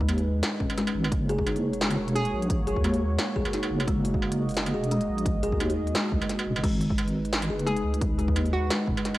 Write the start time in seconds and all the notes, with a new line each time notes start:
Already playing: G#3 D#4 B4
0.01 D#2, kick
0.09 closed hi-hat, struck metal
0.18 open hi-hat
0.43 snare, closed hi-hat
0.60 D#1 C#4, kick
0.70 closed hi-hat, struck metal
0.78 G#3, snare, closed hi-hat
0.87 closed hi-hat, struck metal
0.95 G#1
1.04 closed hi-hat, struck metal
1.12 F#1 A#3 F#4 C#5, kick, closed hi-hat
1.29 G#4, open hi-hat
1.39 kick
1.46 D#4, closed hi-hat, struck metal
1.56 open hi-hat
1.73 open hi-hat
1.81 G#3, snare, closed hi-hat
1.91 open hi-hat, struck metal
1.98 E1
2.08 closed hi-hat
2.15 G#4, closed hi-hat
2.25 closed hi-hat
2.33 A#1
2.42 closed hi-hat
2.50 kick, closed hi-hat
2.67 G#4, open hi-hat
2.76 D#2, kick
2.84 G#3, closed hi-hat, struck metal
2.94 open hi-hat
3.19 snare, closed hi-hat
3.36 C#2 G#4, kick
3.45 closed hi-hat, struck metal
3.53 D#4, snare, closed hi-hat
3.63 closed hi-hat, struck metal
3.70 F#1
3.80 closed hi-hat, struck metal
3.88 F#1 G#3 D#5, kick, closed hi-hat
4.05 open hi-hat
4.14 kick
4.22 struck metal
4.32 closed hi-hat, open hi-hat
4.49 open hi-hat
4.51 open hi-hat
4.54 snare, closed hi-hat, open hi-hat
4.66 open hi-hat, struck metal
4.74 E1 G#4
4.84 closed hi-hat
4.91 G#3, closed hi-hat
5.01 closed hi-hat
5.09 A#1
5.18 closed hi-hat
5.26 kick, closed hi-hat
5.43 G#4, open hi-hat
5.52 D#2, kick
5.60 D#4, closed hi-hat, struck metal
5.70 open hi-hat
5.87 open hi-hat
5.95 G#3, snare, closed hi-hat
6.12 C#2, kick
6.21 closed hi-hat, struck metal
6.29 snare, closed hi-hat
6.39 closed hi-hat, struck metal
6.46 E1
6.56 F#1, closed hi-hat, struck metal
6.63 G#1 G#3 D#4 B4, kick, closed hi-hat, crash
6.81 open hi-hat
6.90 kick
6.98 closed hi-hat, struck metal
7.07 open hi-hat
7.25 open hi-hat
7.33 snare, closed hi-hat
7.42 open hi-hat, struck metal
7.50 F#1 G#4
7.59 closed hi-hat
7.67 G#3 G#4, closed hi-hat
7.76 closed hi-hat
7.84 C#2
7.94 closed hi-hat
8.01 kick, closed hi-hat
8.19 G#3, open hi-hat
8.28 D#2, kick
8.36 D#4, closed hi-hat, struck metal
8.45 open hi-hat
8.53 F#4
8.70 G#3, snare, closed hi-hat
8.87 D#1, kick
8.97 closed hi-hat, struck metal
9.05 snare, closed hi-hat
9.15 closed hi-hat, struck metal